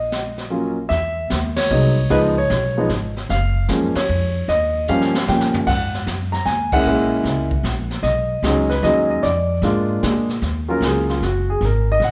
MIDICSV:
0, 0, Header, 1, 5, 480
1, 0, Start_track
1, 0, Key_signature, -6, "minor"
1, 0, Tempo, 396563
1, 1103, Time_signature, 3, 2, 24, 8
1, 14658, End_track
2, 0, Start_track
2, 0, Title_t, "Grand piano"
2, 0, Program_c, 0, 0
2, 0, Note_on_c, 0, 75, 83
2, 607, Note_on_c, 0, 54, 51
2, 613, Note_on_c, 0, 61, 46
2, 615, Note_on_c, 0, 58, 47
2, 618, Note_on_c, 0, 65, 54
2, 893, Note_off_c, 0, 75, 0
2, 905, Note_off_c, 0, 54, 0
2, 907, Note_off_c, 0, 61, 0
2, 909, Note_off_c, 0, 58, 0
2, 910, Note_off_c, 0, 65, 0
2, 1075, Note_on_c, 0, 76, 93
2, 1535, Note_off_c, 0, 76, 0
2, 1893, Note_on_c, 0, 73, 86
2, 2064, Note_on_c, 0, 56, 53
2, 2068, Note_on_c, 0, 54, 57
2, 2069, Note_on_c, 0, 63, 65
2, 2072, Note_on_c, 0, 59, 48
2, 2354, Note_off_c, 0, 56, 0
2, 2356, Note_off_c, 0, 54, 0
2, 2356, Note_off_c, 0, 63, 0
2, 2358, Note_off_c, 0, 59, 0
2, 2545, Note_on_c, 0, 53, 73
2, 2548, Note_on_c, 0, 63, 78
2, 2549, Note_on_c, 0, 59, 65
2, 2551, Note_on_c, 0, 56, 66
2, 2557, Note_on_c, 0, 71, 92
2, 2558, Note_off_c, 0, 73, 0
2, 2628, Note_off_c, 0, 71, 0
2, 2834, Note_off_c, 0, 53, 0
2, 2836, Note_off_c, 0, 59, 0
2, 2836, Note_off_c, 0, 63, 0
2, 2837, Note_off_c, 0, 56, 0
2, 2882, Note_on_c, 0, 73, 83
2, 3356, Note_on_c, 0, 56, 59
2, 3361, Note_on_c, 0, 53, 61
2, 3362, Note_on_c, 0, 59, 55
2, 3367, Note_on_c, 0, 63, 67
2, 3469, Note_off_c, 0, 73, 0
2, 3494, Note_off_c, 0, 56, 0
2, 3496, Note_off_c, 0, 53, 0
2, 3497, Note_off_c, 0, 59, 0
2, 3500, Note_off_c, 0, 63, 0
2, 3997, Note_on_c, 0, 77, 88
2, 4438, Note_off_c, 0, 77, 0
2, 4467, Note_on_c, 0, 56, 51
2, 4469, Note_on_c, 0, 58, 59
2, 4471, Note_on_c, 0, 53, 56
2, 4473, Note_on_c, 0, 61, 63
2, 4755, Note_off_c, 0, 56, 0
2, 4756, Note_off_c, 0, 58, 0
2, 4757, Note_off_c, 0, 53, 0
2, 4758, Note_off_c, 0, 61, 0
2, 4799, Note_on_c, 0, 73, 74
2, 5387, Note_off_c, 0, 73, 0
2, 5431, Note_on_c, 0, 75, 90
2, 5875, Note_off_c, 0, 75, 0
2, 5919, Note_on_c, 0, 77, 88
2, 5924, Note_on_c, 0, 55, 58
2, 5925, Note_on_c, 0, 58, 60
2, 5928, Note_on_c, 0, 53, 66
2, 5930, Note_on_c, 0, 61, 71
2, 6204, Note_off_c, 0, 55, 0
2, 6204, Note_off_c, 0, 58, 0
2, 6205, Note_off_c, 0, 53, 0
2, 6207, Note_off_c, 0, 61, 0
2, 6397, Note_on_c, 0, 79, 83
2, 6400, Note_on_c, 0, 53, 48
2, 6402, Note_on_c, 0, 55, 44
2, 6406, Note_off_c, 0, 77, 0
2, 6409, Note_on_c, 0, 58, 47
2, 6415, Note_on_c, 0, 61, 56
2, 6763, Note_off_c, 0, 79, 0
2, 6862, Note_on_c, 0, 78, 101
2, 6872, Note_off_c, 0, 53, 0
2, 6873, Note_off_c, 0, 55, 0
2, 6876, Note_off_c, 0, 58, 0
2, 6879, Note_off_c, 0, 61, 0
2, 7309, Note_off_c, 0, 78, 0
2, 7653, Note_on_c, 0, 82, 79
2, 7813, Note_on_c, 0, 80, 91
2, 7822, Note_off_c, 0, 82, 0
2, 8117, Note_off_c, 0, 80, 0
2, 8147, Note_on_c, 0, 78, 103
2, 8149, Note_on_c, 0, 58, 61
2, 8151, Note_on_c, 0, 56, 64
2, 8155, Note_on_c, 0, 64, 78
2, 8158, Note_on_c, 0, 61, 58
2, 8289, Note_off_c, 0, 58, 0
2, 8290, Note_off_c, 0, 56, 0
2, 8292, Note_off_c, 0, 64, 0
2, 8294, Note_off_c, 0, 61, 0
2, 8317, Note_on_c, 0, 56, 66
2, 8321, Note_on_c, 0, 64, 67
2, 8322, Note_on_c, 0, 58, 62
2, 8322, Note_on_c, 0, 61, 61
2, 9046, Note_off_c, 0, 56, 0
2, 9049, Note_off_c, 0, 58, 0
2, 9049, Note_off_c, 0, 61, 0
2, 9049, Note_off_c, 0, 64, 0
2, 9536, Note_off_c, 0, 78, 0
2, 9717, Note_on_c, 0, 75, 83
2, 10214, Note_on_c, 0, 56, 61
2, 10215, Note_on_c, 0, 54, 62
2, 10216, Note_on_c, 0, 63, 69
2, 10218, Note_on_c, 0, 61, 60
2, 10482, Note_off_c, 0, 75, 0
2, 10507, Note_off_c, 0, 54, 0
2, 10507, Note_off_c, 0, 56, 0
2, 10508, Note_off_c, 0, 63, 0
2, 10509, Note_off_c, 0, 61, 0
2, 10524, Note_on_c, 0, 71, 76
2, 10689, Note_on_c, 0, 75, 83
2, 10696, Note_off_c, 0, 71, 0
2, 10696, Note_on_c, 0, 54, 65
2, 10700, Note_on_c, 0, 56, 55
2, 10703, Note_on_c, 0, 61, 56
2, 10707, Note_on_c, 0, 63, 62
2, 10993, Note_off_c, 0, 75, 0
2, 11018, Note_on_c, 0, 75, 75
2, 11169, Note_on_c, 0, 74, 83
2, 11178, Note_off_c, 0, 54, 0
2, 11179, Note_off_c, 0, 56, 0
2, 11181, Note_off_c, 0, 61, 0
2, 11183, Note_off_c, 0, 63, 0
2, 11183, Note_off_c, 0, 75, 0
2, 11656, Note_on_c, 0, 56, 53
2, 11663, Note_on_c, 0, 58, 52
2, 11667, Note_on_c, 0, 65, 65
2, 11668, Note_on_c, 0, 62, 58
2, 12085, Note_off_c, 0, 74, 0
2, 12116, Note_off_c, 0, 58, 0
2, 12117, Note_off_c, 0, 56, 0
2, 12119, Note_off_c, 0, 62, 0
2, 12127, Note_off_c, 0, 65, 0
2, 12134, Note_on_c, 0, 58, 47
2, 12135, Note_on_c, 0, 56, 53
2, 12137, Note_on_c, 0, 62, 47
2, 12138, Note_on_c, 0, 68, 54
2, 12426, Note_off_c, 0, 56, 0
2, 12426, Note_off_c, 0, 58, 0
2, 12427, Note_off_c, 0, 62, 0
2, 12428, Note_off_c, 0, 68, 0
2, 12932, Note_on_c, 0, 54, 57
2, 12934, Note_on_c, 0, 61, 51
2, 12937, Note_on_c, 0, 58, 52
2, 12939, Note_on_c, 0, 65, 64
2, 12956, Note_on_c, 0, 70, 82
2, 13102, Note_off_c, 0, 70, 0
2, 13128, Note_on_c, 0, 68, 63
2, 13414, Note_off_c, 0, 65, 0
2, 13426, Note_off_c, 0, 68, 0
2, 13432, Note_on_c, 0, 65, 60
2, 13543, Note_off_c, 0, 54, 0
2, 13544, Note_off_c, 0, 61, 0
2, 13545, Note_off_c, 0, 58, 0
2, 13580, Note_off_c, 0, 65, 0
2, 13599, Note_on_c, 0, 66, 63
2, 13901, Note_off_c, 0, 66, 0
2, 13916, Note_on_c, 0, 68, 71
2, 14062, Note_off_c, 0, 68, 0
2, 14099, Note_on_c, 0, 70, 65
2, 14391, Note_off_c, 0, 70, 0
2, 14423, Note_on_c, 0, 75, 94
2, 14556, Note_off_c, 0, 75, 0
2, 14575, Note_on_c, 0, 78, 79
2, 14658, Note_off_c, 0, 78, 0
2, 14658, End_track
3, 0, Start_track
3, 0, Title_t, "Upright bass"
3, 0, Program_c, 1, 32
3, 0, Note_on_c, 1, 34, 74
3, 1050, Note_off_c, 1, 34, 0
3, 1091, Note_on_c, 1, 40, 77
3, 1563, Note_off_c, 1, 40, 0
3, 1592, Note_on_c, 1, 39, 80
3, 2054, Note_off_c, 1, 39, 0
3, 2065, Note_on_c, 1, 36, 83
3, 2530, Note_off_c, 1, 36, 0
3, 2545, Note_on_c, 1, 37, 84
3, 3011, Note_off_c, 1, 37, 0
3, 3026, Note_on_c, 1, 35, 90
3, 3491, Note_off_c, 1, 35, 0
3, 3504, Note_on_c, 1, 32, 79
3, 3970, Note_off_c, 1, 32, 0
3, 3996, Note_on_c, 1, 30, 73
3, 4456, Note_off_c, 1, 30, 0
3, 4471, Note_on_c, 1, 42, 85
3, 4767, Note_off_c, 1, 42, 0
3, 4951, Note_on_c, 1, 41, 77
3, 5413, Note_off_c, 1, 41, 0
3, 5424, Note_on_c, 1, 39, 78
3, 5890, Note_off_c, 1, 39, 0
3, 5920, Note_on_c, 1, 43, 84
3, 6378, Note_off_c, 1, 43, 0
3, 6396, Note_on_c, 1, 46, 75
3, 6852, Note_off_c, 1, 46, 0
3, 6860, Note_on_c, 1, 44, 77
3, 7327, Note_off_c, 1, 44, 0
3, 7341, Note_on_c, 1, 42, 80
3, 7807, Note_off_c, 1, 42, 0
3, 7815, Note_on_c, 1, 39, 76
3, 8284, Note_off_c, 1, 39, 0
3, 8303, Note_on_c, 1, 34, 76
3, 8753, Note_off_c, 1, 34, 0
3, 8761, Note_on_c, 1, 37, 79
3, 9232, Note_off_c, 1, 37, 0
3, 9239, Note_on_c, 1, 34, 75
3, 9707, Note_off_c, 1, 34, 0
3, 9715, Note_on_c, 1, 35, 77
3, 10189, Note_off_c, 1, 35, 0
3, 10197, Note_on_c, 1, 37, 76
3, 10673, Note_off_c, 1, 37, 0
3, 10682, Note_on_c, 1, 39, 82
3, 11156, Note_off_c, 1, 39, 0
3, 11174, Note_on_c, 1, 41, 76
3, 11632, Note_off_c, 1, 41, 0
3, 11640, Note_on_c, 1, 44, 85
3, 12115, Note_off_c, 1, 44, 0
3, 12142, Note_on_c, 1, 46, 73
3, 12601, Note_off_c, 1, 46, 0
3, 12609, Note_on_c, 1, 39, 81
3, 13072, Note_off_c, 1, 39, 0
3, 13079, Note_on_c, 1, 37, 81
3, 13554, Note_off_c, 1, 37, 0
3, 13559, Note_on_c, 1, 30, 69
3, 14034, Note_off_c, 1, 30, 0
3, 14049, Note_on_c, 1, 32, 82
3, 14516, Note_off_c, 1, 32, 0
3, 14524, Note_on_c, 1, 34, 78
3, 14658, Note_off_c, 1, 34, 0
3, 14658, End_track
4, 0, Start_track
4, 0, Title_t, "Muted upright bass strokes"
4, 4784, Note_on_c, 9, 29, 39
4, 4905, Note_off_c, 9, 29, 0
4, 14658, End_track
5, 0, Start_track
5, 0, Title_t, "Drums"
5, 144, Note_on_c, 9, 44, 49
5, 146, Note_on_c, 9, 38, 52
5, 265, Note_off_c, 9, 44, 0
5, 267, Note_off_c, 9, 38, 0
5, 456, Note_on_c, 9, 38, 31
5, 577, Note_off_c, 9, 38, 0
5, 1098, Note_on_c, 9, 25, 45
5, 1098, Note_on_c, 9, 38, 39
5, 1219, Note_off_c, 9, 38, 0
5, 1572, Note_on_c, 9, 44, 55
5, 1574, Note_on_c, 9, 38, 61
5, 1693, Note_off_c, 9, 44, 0
5, 1695, Note_off_c, 9, 38, 0
5, 1893, Note_on_c, 9, 51, 63
5, 1895, Note_on_c, 9, 38, 74
5, 2014, Note_off_c, 9, 51, 0
5, 2016, Note_off_c, 9, 38, 0
5, 2541, Note_off_c, 9, 25, 0
5, 2541, Note_on_c, 9, 25, 50
5, 2541, Note_on_c, 9, 38, 43
5, 2662, Note_off_c, 9, 38, 0
5, 3024, Note_on_c, 9, 38, 45
5, 3145, Note_off_c, 9, 38, 0
5, 3502, Note_on_c, 9, 44, 57
5, 3504, Note_on_c, 9, 38, 60
5, 3623, Note_off_c, 9, 44, 0
5, 3625, Note_off_c, 9, 38, 0
5, 3834, Note_on_c, 9, 38, 37
5, 3955, Note_off_c, 9, 38, 0
5, 3984, Note_off_c, 9, 25, 0
5, 3984, Note_on_c, 9, 25, 50
5, 3984, Note_on_c, 9, 38, 43
5, 4105, Note_off_c, 9, 38, 0
5, 4459, Note_on_c, 9, 44, 63
5, 4461, Note_on_c, 9, 38, 61
5, 4580, Note_off_c, 9, 44, 0
5, 4582, Note_off_c, 9, 38, 0
5, 4784, Note_on_c, 9, 51, 64
5, 4787, Note_on_c, 9, 38, 80
5, 4905, Note_off_c, 9, 51, 0
5, 4908, Note_off_c, 9, 38, 0
5, 5425, Note_off_c, 9, 25, 0
5, 5425, Note_on_c, 9, 25, 46
5, 5425, Note_on_c, 9, 38, 41
5, 5546, Note_off_c, 9, 38, 0
5, 5903, Note_on_c, 9, 44, 56
5, 6024, Note_off_c, 9, 44, 0
5, 6070, Note_on_c, 9, 38, 46
5, 6191, Note_off_c, 9, 38, 0
5, 6230, Note_on_c, 9, 38, 67
5, 6351, Note_off_c, 9, 38, 0
5, 6390, Note_on_c, 9, 38, 66
5, 6511, Note_off_c, 9, 38, 0
5, 6544, Note_on_c, 9, 38, 64
5, 6665, Note_off_c, 9, 38, 0
5, 6705, Note_on_c, 9, 43, 73
5, 6826, Note_off_c, 9, 43, 0
5, 6868, Note_on_c, 9, 36, 69
5, 6875, Note_off_c, 9, 25, 0
5, 6875, Note_on_c, 9, 25, 51
5, 6875, Note_on_c, 9, 38, 44
5, 6875, Note_on_c, 9, 49, 70
5, 6989, Note_off_c, 9, 36, 0
5, 6996, Note_off_c, 9, 38, 0
5, 6996, Note_off_c, 9, 49, 0
5, 7193, Note_on_c, 9, 38, 48
5, 7314, Note_off_c, 9, 38, 0
5, 7347, Note_on_c, 9, 44, 56
5, 7350, Note_on_c, 9, 38, 60
5, 7468, Note_off_c, 9, 44, 0
5, 7471, Note_off_c, 9, 38, 0
5, 7668, Note_on_c, 9, 38, 38
5, 7789, Note_off_c, 9, 38, 0
5, 7820, Note_on_c, 9, 38, 44
5, 7941, Note_off_c, 9, 38, 0
5, 8136, Note_on_c, 9, 49, 75
5, 8138, Note_on_c, 9, 36, 79
5, 8257, Note_off_c, 9, 49, 0
5, 8259, Note_off_c, 9, 36, 0
5, 8300, Note_off_c, 9, 25, 0
5, 8300, Note_on_c, 9, 25, 44
5, 8775, Note_on_c, 9, 38, 49
5, 8896, Note_off_c, 9, 38, 0
5, 9092, Note_on_c, 9, 36, 52
5, 9213, Note_off_c, 9, 36, 0
5, 9247, Note_on_c, 9, 44, 51
5, 9250, Note_on_c, 9, 38, 59
5, 9368, Note_off_c, 9, 44, 0
5, 9371, Note_off_c, 9, 38, 0
5, 9570, Note_on_c, 9, 38, 41
5, 9691, Note_off_c, 9, 38, 0
5, 9724, Note_off_c, 9, 25, 0
5, 9724, Note_on_c, 9, 25, 53
5, 9724, Note_on_c, 9, 38, 47
5, 9845, Note_off_c, 9, 38, 0
5, 10207, Note_on_c, 9, 44, 63
5, 10210, Note_on_c, 9, 38, 61
5, 10328, Note_off_c, 9, 44, 0
5, 10331, Note_off_c, 9, 38, 0
5, 10531, Note_on_c, 9, 38, 38
5, 10652, Note_off_c, 9, 38, 0
5, 10692, Note_on_c, 9, 38, 39
5, 10813, Note_off_c, 9, 38, 0
5, 11172, Note_off_c, 9, 25, 0
5, 11172, Note_on_c, 9, 25, 50
5, 11172, Note_on_c, 9, 38, 44
5, 11293, Note_off_c, 9, 38, 0
5, 11651, Note_on_c, 9, 38, 48
5, 11772, Note_off_c, 9, 38, 0
5, 12137, Note_on_c, 9, 44, 57
5, 12140, Note_on_c, 9, 38, 66
5, 12258, Note_off_c, 9, 44, 0
5, 12261, Note_off_c, 9, 38, 0
5, 12459, Note_on_c, 9, 38, 39
5, 12580, Note_off_c, 9, 38, 0
5, 12617, Note_off_c, 9, 25, 0
5, 12617, Note_on_c, 9, 25, 43
5, 12617, Note_on_c, 9, 38, 40
5, 12738, Note_off_c, 9, 38, 0
5, 13093, Note_on_c, 9, 44, 59
5, 13096, Note_on_c, 9, 38, 59
5, 13214, Note_off_c, 9, 44, 0
5, 13217, Note_off_c, 9, 38, 0
5, 13428, Note_on_c, 9, 38, 36
5, 13549, Note_off_c, 9, 38, 0
5, 13583, Note_on_c, 9, 38, 39
5, 13704, Note_off_c, 9, 38, 0
5, 14066, Note_off_c, 9, 25, 0
5, 14066, Note_on_c, 9, 25, 46
5, 14066, Note_on_c, 9, 38, 39
5, 14187, Note_off_c, 9, 38, 0
5, 14539, Note_on_c, 9, 38, 43
5, 14658, Note_off_c, 9, 25, 0
5, 14658, Note_off_c, 9, 38, 0
5, 14658, End_track
0, 0, End_of_file